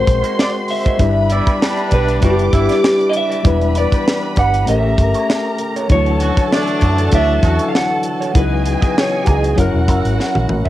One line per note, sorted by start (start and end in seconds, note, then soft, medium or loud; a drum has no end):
0.00 0.63 G#3 medium
0.00 0.98 G#3 medium
0.00 0.64 C4 medium
0.00 0.97 C4 medium
0.00 0.65 F#4 medium
0.00 0.98 F#4 medium
0.00 0.65 A#4 medium
0.00 0.40 C5 medium
0.00 0.97 C5 medium
0.00 0.97 C6 medium
0.06 0.21 A#1 loud
0.06 muted clean electric guitar stroke soft
0.06 kick medium
0.06 closed hi-hat medium
0.23 0.36 A#3 soft
0.23 0.37 D#4 soft
0.23 0.37 F#4 medium
0.23 0.37 C5 medium
0.23 closed hi-hat medium
0.39 0.48 D5 medium
0.39 snare loud
0.54 muted clean electric guitar stroke soft
0.68 1.32 E5 loud
0.68 open hi-hat medium
0.85 0.99 A#3 medium
0.85 0.99 D#4 medium
0.85 1.00 F#4 medium
0.85 1.00 C5 medium
0.85 kick medium
0.85 closed hi-hat soft
0.98 1.39 G1 loud
0.98 1.86 G3 medium
0.98 3.42 G3 medium
0.98 1.19 B3 medium
0.98 1.87 D4 medium
0.98 3.43 D4 medium
0.98 3.42 E4 medium
0.98 1.19 E4 medium
0.98 1.87 E4 medium
0.98 1.19 G4 medium
0.98 2.20 B4 medium
0.98 3.42 B4 medium
0.98 1.88 B4 medium
0.98 1.19 D5 medium
0.98 2.20 B5 medium
0.98 kick loud
0.98 closed hi-hat medium
1.30 1.55 G3 medium
1.30 1.54 B3 medium
1.30 1.54 E4 medium
1.30 1.94 D5 medium
1.30 muted clean electric guitar stroke soft
1.30 closed hi-hat medium
1.46 1.59 B3 soft
1.46 1.59 E4 medium
1.46 1.60 G4 soft
1.46 1.60 D5 medium
1.46 kick medium
1.46 closed hi-hat soft
1.60 2.18 G3 medium
1.60 2.18 B3 medium
1.60 2.18 D4 loud
1.60 muted clean electric guitar stroke soft
1.60 snare loud
1.77 muted clean electric guitar stroke soft
1.77 closed hi-hat soft
1.91 2.18 B1 medium
1.91 2.11 B3 medium
1.91 2.07 E4 medium
1.91 2.07 G4 medium
1.91 2.21 B4 medium
1.91 2.06 D5 medium
1.91 kick medium
1.91 closed hi-hat medium
2.07 muted clean electric guitar stroke soft
2.07 closed hi-hat medium
2.20 2.48 F#1 medium
2.20 3.09 G3 medium
2.20 2.47 G3 medium
2.20 2.41 B3 medium
2.20 2.47 B3 medium
2.20 3.09 D4 medium
2.20 2.47 D4 medium
2.20 2.42 E4 medium
2.20 3.10 E4 medium
2.20 2.42 G4 medium
2.20 3.11 B4 medium
2.20 3.42 D5 medium
2.20 2.42 D5 medium
2.20 3.42 D6 medium
2.20 kick medium
2.20 closed hi-hat medium
2.24 3.11 G4 medium
2.39 closed hi-hat soft
2.53 2.67 G1 loud
2.53 2.77 G3 medium
2.53 2.77 B3 medium
2.53 2.77 E4 medium
2.53 muted clean electric guitar stroke soft
2.53 kick medium
2.53 closed hi-hat medium
2.69 2.82 B3 medium
2.69 2.82 E4 soft
2.69 2.83 G4 medium
2.69 2.82 D5 medium
2.69 snare soft
2.69 closed hi-hat medium
2.84 snare loud
2.99 muted clean electric guitar stroke soft
2.99 closed hi-hat soft
3.10 3.15 D#5 medium
3.10 closed hi-hat medium
3.17 3.77 E5 loud
3.30 3.44 B3 medium
3.30 3.44 E4 medium
3.30 3.43 G4 medium
3.30 3.44 D5 medium
3.30 closed hi-hat medium
3.43 3.84 E1 loud
3.43 4.66 E3 medium
3.43 4.31 G3 medium
3.43 4.66 B3 medium
3.43 3.64 D4 medium
3.43 4.32 D4 medium
3.43 4.66 D4 medium
3.43 4.33 E4 medium
3.43 5.87 G4 medium
3.43 3.64 G4 medium
3.43 3.64 B4 medium
3.43 4.65 B4 medium
3.43 3.64 D5 medium
3.43 4.65 B5 medium
3.43 kick loud
3.43 closed hi-hat medium
3.47 4.33 B4 medium
3.61 closed hi-hat soft
3.75 4.39 D5 loud
3.75 muted clean electric guitar stroke soft
3.75 closed hi-hat medium
3.91 4.05 D4 soft
3.91 4.05 G4 soft
3.91 4.05 B4 medium
3.91 4.05 D5 medium
3.91 kick medium
3.91 closed hi-hat medium
4.08 snare loud
4.23 muted clean electric guitar stroke soft
4.36 4.63 G1 loud
4.36 4.56 D4 medium
4.36 4.53 G4 medium
4.36 4.52 B4 medium
4.36 4.52 D5 medium
4.36 4.69 F#5 loud
4.36 kick medium
4.36 closed hi-hat medium
4.53 muted clean electric guitar stroke soft
4.53 closed hi-hat medium
4.65 4.93 A1 medium
4.65 5.54 A3 medium
4.65 5.88 A3 medium
4.65 4.88 A#3 medium
4.65 5.54 C#4 medium
4.65 4.88 E4 medium
4.65 5.55 G4 medium
4.65 4.89 G4 medium
4.65 5.87 A#4 medium
4.65 4.89 C#5 medium
4.65 5.87 A#5 medium
4.65 closed hi-hat medium
4.69 5.56 A#4 medium
4.69 5.56 E5 medium
4.98 5.12 G1 medium
4.98 muted clean electric guitar stroke soft
4.98 kick medium
4.98 closed hi-hat medium
5.14 5.28 A#3 medium
5.14 5.28 E4 medium
5.14 5.28 G4 medium
5.14 5.28 C#5 medium
5.14 closed hi-hat medium
5.29 muted clean electric guitar stroke soft
5.29 snare loud
5.45 muted clean electric guitar stroke soft
5.58 closed hi-hat medium
5.76 5.89 A#3 medium
5.76 5.89 E4 medium
5.76 5.90 G4 medium
5.76 5.90 C#5 medium
5.76 closed hi-hat medium
5.88 6.30 D2 loud
5.88 8.33 D3 medium
5.88 5.96 E3 medium
5.88 9.54 E3 medium
5.88 6.09 A3 medium
5.88 6.77 D4 medium
5.88 6.10 E4 medium
5.88 6.78 E4 medium
5.88 9.54 F#4 medium
5.88 6.10 F#4 medium
5.88 8.31 A4 medium
5.88 6.10 C#5 medium
5.88 6.78 C#5 medium
5.88 6.53 C#5 loud
5.88 8.31 A5 medium
5.88 kick loud
5.88 closed hi-hat medium
5.94 6.80 F#3 medium
6.06 closed hi-hat soft
6.20 6.45 A3 medium
6.20 6.45 C#4 medium
6.20 6.45 F#4 medium
6.20 muted clean electric guitar stroke soft
6.20 closed hi-hat medium
6.37 6.50 A3 soft
6.37 6.51 E4 medium
6.37 6.51 F#4 medium
6.37 6.50 C#5 medium
6.37 kick loud
6.37 closed hi-hat medium
6.51 7.09 F#3 medium
6.51 7.09 A3 loud
6.51 7.09 D4 loud
6.51 7.14 D5 medium
6.51 snare loud
6.67 muted clean electric guitar stroke soft
6.67 closed hi-hat soft
6.81 7.08 F#2 loud
6.81 7.01 A3 medium
6.81 6.98 E4 medium
6.81 6.98 F#4 medium
6.81 6.97 C#5 medium
6.81 kick medium
6.81 closed hi-hat medium
6.98 muted clean electric guitar stroke soft
6.98 closed hi-hat medium
7.10 7.38 D2 loud
7.10 7.99 F#3 medium
7.10 7.37 F#3 medium
7.10 7.32 A3 medium
7.10 7.37 A3 medium
7.10 8.00 D4 medium
7.10 7.37 D4 loud
7.10 7.32 E4 medium
7.10 8.00 E4 medium
7.10 7.32 F#4 medium
7.10 7.32 C#5 medium
7.10 kick medium
7.10 closed hi-hat loud
7.14 8.01 C#5 medium
7.14 7.68 E5 loud
7.43 7.57 E2 loud
7.43 7.68 A3 medium
7.43 7.68 C#4 medium
7.43 7.68 F#4 medium
7.43 muted clean electric guitar stroke soft
7.43 kick medium
7.43 closed hi-hat medium
7.59 7.72 A3 soft
7.59 7.73 E4 soft
7.59 7.73 F#4 medium
7.59 7.73 C#5 medium
7.59 closed hi-hat medium
7.68 7.74 F5 medium
7.74 8.38 F#5 loud
7.74 muted clean electric guitar stroke soft
7.74 snare medium
7.90 muted clean electric guitar stroke soft
8.03 closed hi-hat medium
8.21 8.34 A3 medium
8.21 8.33 E4 medium
8.21 8.34 F#4 medium
8.21 8.35 C#5 medium
8.21 closed hi-hat medium
8.33 8.75 C#2 loud
8.33 9.57 C#3 medium
8.33 9.22 F#3 medium
8.33 9.57 B3 medium
8.33 9.22 D#4 medium
8.33 8.54 E4 medium
8.33 9.23 E4 medium
8.33 8.54 F#4 medium
8.33 9.55 G#4 medium
8.33 8.55 B4 medium
8.33 9.23 B4 medium
8.33 9.56 D#5 medium
8.33 8.55 D#5 medium
8.33 9.55 G#5 loud
8.33 kick loud
8.33 closed hi-hat medium
8.38 8.99 B4 loud
8.65 muted clean electric guitar stroke soft
8.65 closed hi-hat medium
8.81 8.95 E4 soft
8.81 8.95 F#4 soft
8.81 8.95 B4 medium
8.81 8.95 D#5 medium
8.81 kick medium
8.81 closed hi-hat medium
8.98 9.23 C#5 medium
8.98 snare loud
9.13 muted clean electric guitar stroke soft
9.22 9.28 G4 medium
9.22 closed hi-hat medium
9.27 9.53 C#2 loud
9.27 9.48 E4 medium
9.27 9.43 F#4 medium
9.27 9.59 G#4 medium
9.27 9.43 B4 medium
9.27 9.42 D#5 medium
9.27 kick medium
9.43 muted clean electric guitar stroke soft
9.43 closed hi-hat medium
9.56 9.72 F#1 medium
9.56 10.44 F#3 medium
9.56 10.69 F#3 medium
9.56 10.45 C#4 medium
9.56 9.77 C#4 medium
9.56 10.69 C#4 medium
9.56 10.69 E4 medium
9.56 10.45 E4 medium
9.56 10.69 F#4 medium
9.56 9.74 F#4 medium
9.56 10.69 A#4 medium
9.56 9.73 A#4 medium
9.56 10.46 A#4 medium
9.56 9.72 E5 medium
9.56 10.69 F#5 medium
9.56 kick medium
9.56 closed hi-hat medium
9.60 10.46 A#4 medium
9.74 9.88 E1 medium
9.74 muted clean electric guitar stroke soft
9.88 10.02 F#1 medium
9.88 10.03 C#4 soft
9.88 10.04 F#4 medium
9.88 10.04 A#4 medium
9.88 10.03 E5 medium
9.88 kick loud
9.88 closed hi-hat medium
10.05 10.17 G#1 medium
10.05 muted clean electric guitar stroke soft
10.05 closed hi-hat medium
10.18 muted clean electric guitar stroke soft
10.18 snare medium
10.35 10.47 A#1 medium
10.35 muted clean electric guitar stroke soft
10.35 high tom medium
10.49 10.63 A1 loud
10.49 mid tom medium
10.65 10.69 A#1 medium
10.65 10.69 F#4 medium
10.65 10.69 A#4 medium
10.65 10.69 E5 medium
10.65 floor tom medium